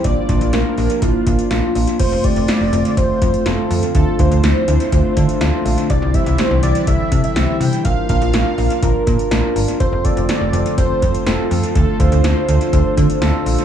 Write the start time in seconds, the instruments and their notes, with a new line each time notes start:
0.04 fm bass A#1, analog synth pad F3 A#3 D4, tine electric piano A#3 D4 F4, analog synth lead D5, kick, closed hi-hat
0.29 fm bass A#1, tine electric piano A#3 D4 F4, kick, closed hi-hat
0.41 fm bass A#1, closed hi-hat
0.53 fm bass A#1, tine electric piano A#3 D4 F4, analog synth lead A#4, snare, closed hi-hat
0.77 fm bass A#1, tine electric piano A#3 D4 G4, open hi-hat
0.90 closed hi-hat
1.02 fm bass A#1, tine electric piano A#3 D4 E4, analog synth lead F4, kick, closed hi-hat
1.26 fm bass A#1, tine electric piano A#3 D4 F4, kick, closed hi-hat
1.39 closed hi-hat
1.51 fm bass A#1, tine electric piano A#3 D4 F4, snare, closed hi-hat
1.75 fm bass A#1, tine electric piano A#3 D4 F4, open hi-hat
1.87 closed hi-hat
1.99 fm bass F1, analog synth pad D3 F3 A3 C4 F4, tine electric piano A3 C4 F4, analog synth lead C5, kick, closed hi-hat, crash
2.12 fm bass F1
2.24 tine electric piano A3 C4 G4, analog synth lead D5, kick, closed hi-hat
2.36 fm bass F1, closed hi-hat
2.48 tine electric piano A3 C4 F4, analog synth lead D5, snare, closed hi-hat
2.61 fm bass F1
2.73 fm bass F1, tine electric piano A3 C4 F4, closed hi-hat
2.85 closed hi-hat
2.97 fm bass F1, tine electric piano A3 C4 F4, analog synth lead C5, kick, closed hi-hat
3.21 fm bass F2, tine electric piano A3 C4 F4, kick, closed hi-hat
3.34 closed hi-hat
3.46 fm bass F1, tine electric piano A3 C4 F4, analog synth lead A4, snare, closed hi-hat
3.70 fm bass F2, tine electric piano A3 C4 F4, open hi-hat
3.83 closed hi-hat
3.94 fm bass D2, analog synth pad A3, tine electric piano A3 D4 F4, analog synth lead A4, kick, closed hi-hat
4.19 fm bass D2, tine electric piano A3 D4 F4, analog synth lead C5, kick, closed hi-hat
4.31 fm bass D2, closed hi-hat
4.43 fm bass D2, tine electric piano A3 D4 E4, snare, closed hi-hat
4.68 fm bass D2, tine electric piano A3 D4 E4, closed hi-hat
4.80 closed hi-hat
4.92 fm bass D2, tine electric piano A3 D4 F4, kick, closed hi-hat
5.17 fm bass D3, tine electric piano A3 D4 F4, kick, closed hi-hat
5.29 closed hi-hat
5.41 fm bass D2, tine electric piano A3 D4 F4, snare, closed hi-hat
5.65 fm bass A#1, tine electric piano A3 D4 F4, open hi-hat
5.78 closed hi-hat
5.90 fm bass C2, analog synth pad E3 G3 E4, tine electric piano C4 E4 G4, analog synth lead D5, kick, closed hi-hat
6.02 fm bass C2
6.14 tine electric piano C4 E4 G4, analog synth lead E5, kick, closed hi-hat
6.26 fm bass C2, closed hi-hat
6.38 tine electric piano C4 E4 G4, analog synth lead C5, snare, closed hi-hat
6.51 fm bass C2
6.63 fm bass C2, tine electric piano C4 E4 G4, analog synth lead D5, closed hi-hat
6.75 closed hi-hat
6.87 fm bass C2, tine electric piano C4 E4 A4, analog synth lead E5, kick, closed hi-hat
7.11 fm bass C3, tine electric piano C4 E4 A4, kick, closed hi-hat
7.24 analog synth lead E5, closed hi-hat
7.36 fm bass C2, tine electric piano C4 E4 G4, snare, closed hi-hat
7.60 fm bass C3, tine electric piano C4 E4 G4, analog synth lead G5, open hi-hat
7.73 closed hi-hat
7.85 fm bass A#1, analog synth pad F3 A#3 D4, tine electric piano D4 F4 A#4, analog synth lead F5, kick, closed hi-hat
8.09 fm bass A#1, tine electric piano D4 F4 A#4, analog synth lead F5, kick, closed hi-hat
8.21 fm bass A#1, closed hi-hat
8.34 fm bass A#1, tine electric piano D4 F4 A#4, snare, closed hi-hat
8.58 fm bass A#1, tine electric piano D4 F4 A#4, open hi-hat
8.70 closed hi-hat
8.82 fm bass A#1, tine electric piano D4 F4 A#4, analog synth lead A#4, kick, closed hi-hat
9.07 fm bass A#2, tine electric piano D4 F4 A#4, kick, closed hi-hat
9.19 closed hi-hat
9.31 fm bass A#1, tine electric piano D4 F4 A#4, snare, closed hi-hat
9.56 fm bass G1, tine electric piano D4 F4 A#4, open hi-hat
9.68 closed hi-hat
9.80 fm bass F1, analog synth pad D3 A3 C4 F4, tine electric piano C4 F4 A4, analog synth lead C5, kick, closed hi-hat
9.92 fm bass F1
10.04 tine electric piano C4 F4 A4, analog synth lead D5, kick, closed hi-hat
10.17 fm bass F1, closed hi-hat
10.29 tine electric piano C4 A4, analog synth lead D5, snare, closed hi-hat
10.41 fm bass F1
10.53 fm bass F1, tine electric piano C4 F4 A4, closed hi-hat
10.66 closed hi-hat
10.77 fm bass F1, tine electric piano C4 F4 A4, analog synth lead C5, kick, closed hi-hat
11.02 fm bass F2, tine electric piano C4, kick, closed hi-hat
11.14 closed hi-hat
11.26 fm bass F1, tine electric piano C4 F4 A4, analog synth lead A4, snare, closed hi-hat
11.51 fm bass F2, tine electric piano C4 F4 A4, open hi-hat
11.63 closed hi-hat
11.75 fm bass D2, analog synth pad D3 C4, tine electric piano D4 F4 A4, analog synth lead A4, kick, closed hi-hat
11.99 fm bass D2, tine electric piano D4 F4 A4, analog synth lead C5, kick, closed hi-hat
12.12 fm bass D2, closed hi-hat
12.24 fm bass D2, tine electric piano D4 F4 A4, snare, closed hi-hat
12.48 fm bass D2, tine electric piano D4 F4 A4, closed hi-hat
12.61 closed hi-hat
12.73 fm bass D2, tine electric piano D4 F4 A4, kick, closed hi-hat
12.97 fm bass D3, tine electric piano D4 F4 A4, kick, closed hi-hat
13.10 closed hi-hat
13.21 fm bass D2, tine electric piano D4 F4 A4, snare, closed hi-hat
13.46 fm bass A#1, tine electric piano D4 F4 A4, open hi-hat
13.58 closed hi-hat